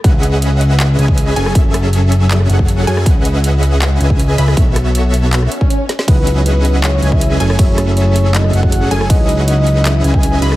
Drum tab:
RD |----------------|----------------|----------------|----------------|
HH |x-x-x-x-x-x-x-x-|x-x-x-x-x-x-x-x-|x-x-x-x-x-x-x-x-|x-x-x-x-x-x-x-x-|
CP |--------x-------|--------x-------|--------x-------|--------x-------|
SD |--------r------r|--r------r-----r|--------r------r|--r------r----oo|
BD |o----------o----|o----------o----|o----------o----|o----------o----|

RD |x---------------|x---------------|x---------------|
HH |x-x-x-x-x-x-x-x-|x-x-x-x-x-x-x-x-|x-x-x-x-x-x-x-x-|
CP |--------x-------|--------x-------|--------x-------|
SD |--------r------r|--r------r-----r|--------r------r|
BD |o----------o----|o----------o----|o----------o----|